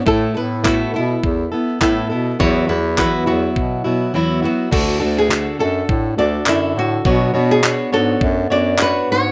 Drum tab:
CC |--------|--------|x-------|--------|
CP |--x---x-|--x-----|--x---x-|--x---x-|
BD |o-o-o-o-|o-o-o---|o---o---|o---o---|